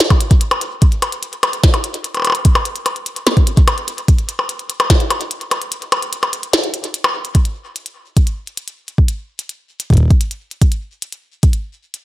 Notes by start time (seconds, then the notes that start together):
0.00 snare, closed hi-hat
0.10 kick, closed hi-hat, percussion blips
0.21 closed hi-hat
0.31 kick, closed hi-hat
0.41 closed hi-hat
0.51 closed hi-hat, percussion blips
0.61 closed hi-hat
0.82 kick, closed hi-hat
0.92 closed hi-hat
1.02 closed hi-hat, percussion blips
1.12 closed hi-hat
1.23 closed hi-hat
1.33 closed hi-hat
1.43 closed hi-hat, percussion blips
1.53 closed hi-hat
1.64 kick, snare, closed hi-hat
1.74 closed hi-hat, percussion blips
1.84 closed hi-hat
1.94 closed hi-hat
2.04 closed hi-hat
2.15 closed hi-hat, percussion blips
2.17 percussion blips
2.20 percussion blips
2.22 closed hi-hat, percussion blips
2.25 percussion blips
2.27 percussion blips
2.30 percussion blips
2.32 closed hi-hat, percussion blips
2.45 kick, closed hi-hat
2.55 closed hi-hat, percussion blips
2.65 closed hi-hat
2.76 closed hi-hat
2.86 closed hi-hat, percussion blips
2.96 closed hi-hat
3.06 closed hi-hat
3.16 closed hi-hat
3.27 snare, closed hi-hat, percussion blips
3.37 kick, closed hi-hat
3.47 closed hi-hat
3.57 kick, closed hi-hat
3.68 closed hi-hat, percussion blips
3.78 closed hi-hat
3.88 closed hi-hat
3.98 closed hi-hat
4.08 kick, closed hi-hat
4.19 closed hi-hat
4.29 closed hi-hat
4.39 percussion blips
4.49 closed hi-hat
4.59 closed hi-hat
4.70 closed hi-hat
4.80 closed hi-hat, percussion blips
4.90 kick, snare, closed hi-hat
5.00 closed hi-hat
5.10 closed hi-hat, percussion blips
5.21 closed hi-hat
5.31 closed hi-hat
5.41 closed hi-hat
5.51 closed hi-hat, percussion blips
5.62 closed hi-hat
5.72 closed hi-hat
5.82 closed hi-hat
5.92 closed hi-hat, percussion blips
6.02 closed hi-hat
6.13 closed hi-hat
6.23 closed hi-hat, percussion blips
6.33 closed hi-hat
6.43 closed hi-hat
6.53 snare, closed hi-hat
6.64 closed hi-hat
6.74 closed hi-hat
6.84 closed hi-hat
6.94 closed hi-hat
7.04 closed hi-hat, percussion blips
7.25 closed hi-hat
7.35 kick, closed hi-hat
7.45 closed hi-hat
7.76 closed hi-hat
7.86 closed hi-hat
8.17 kick, closed hi-hat
8.27 closed hi-hat
8.47 closed hi-hat
8.57 closed hi-hat
8.68 closed hi-hat
8.88 closed hi-hat
8.98 kick
9.08 closed hi-hat
9.39 closed hi-hat
9.49 closed hi-hat
9.80 closed hi-hat
9.90 kick, closed hi-hat
9.93 kick, closed hi-hat
9.95 kick, closed hi-hat
9.98 kick
10.00 kick
10.03 kick
10.05 kick
10.08 kick
10.10 kick, closed hi-hat
10.21 closed hi-hat
10.31 closed hi-hat
10.51 closed hi-hat
10.62 kick, closed hi-hat
10.72 closed hi-hat
11.02 closed hi-hat
11.12 closed hi-hat
11.43 kick, closed hi-hat
11.53 closed hi-hat
11.94 closed hi-hat